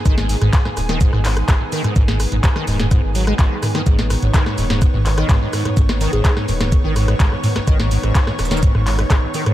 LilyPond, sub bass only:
\new Staff \with { instrumentName = "Sub bass" } { \clef bass \time 4/4 \key gis \minor \tempo 4 = 126 gis,,8. gis,,16 r8 dis,,8. gis,,8. gis,,16 r8. | gis,,8. gis,,16 r8 dis,,8. gis,,8. gis,,16 r8. | gis,,8. gis,,16 r8 dis,,8. gis,,8. gis,,16 r8. | gis,,8. gis,,16 r8 dis,,8. gis,,8. gis,,16 r8. |
gis,,8. gis,,16 r8 dis,,8. gis,,8. gis,,16 r8. | }